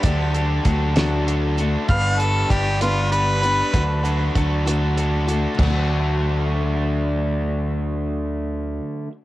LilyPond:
<<
  \new Staff \with { instrumentName = "Harmonica" } { \time 6/8 \key d \major \tempo 4. = 65 r2. | f''8 a'8 g'8 f'8 b'4~ | b'4 r2 | r2. |
r2. | }
  \new Staff \with { instrumentName = "Overdriven electric guitar" } { \time 6/8 \key d \major <d d' fis' a'>8 <d' fis' a'>8 <d d' fis' a'>8 <d' fis' a'>8 <d d' fis' a'>8 <d' fis' a'>8 | <g b d' b'>8 <b d' b'>8 <g b d' b'>8 <b d' b'>8 <g b d' b'>8 <b d' b'>8 | <d d' fis' a'>8 <d' fis' a'>8 <d d' fis' a'>8 <d' fis' a'>8 <d d' fis' a'>8 <d' fis' a'>8 | <d a d' fis'>2.~ |
<d a d' fis'>2. | }
  \new Staff \with { instrumentName = "Steel-string acoustic guitar" } { \time 6/8 \key d \major <d fis a d' fis'>4 <fis a d' fis'>8 <d fis a d' fis'>4 <a d' fis'>8 | <g, d g b d' g'>4 <g b d' g'>8 <g, d g b d' g'>4 <g b d' g'>8 | <d fis a d' fis'>4 <fis a d' fis'>8 <d fis a d' fis'>4 <a d' fis'>8 | <d fis a d' fis'>2.~ |
<d fis a d' fis'>2. | }
  \new Staff \with { instrumentName = "Picked electric bass" } { \clef bass \time 6/8 \key d \major d,4 d,2 | g,,4 g,,2 | d,4 d,2 | d,2.~ |
d,2. | }
  \new DrumStaff \with { instrumentName = "Drums" } \drummode { \time 6/8 <hh bd>8 hh8 <hh bd>8 <hh sn>8 hh8 hh8 | <hh bd>8 hh8 <hh bd>8 hh8 hh8 hh8 | <hh bd>8 hh8 <hh bd>8 hh8 hh8 hh8 | <cymc bd tomfh>4. r4. |
r4. r4. | }
>>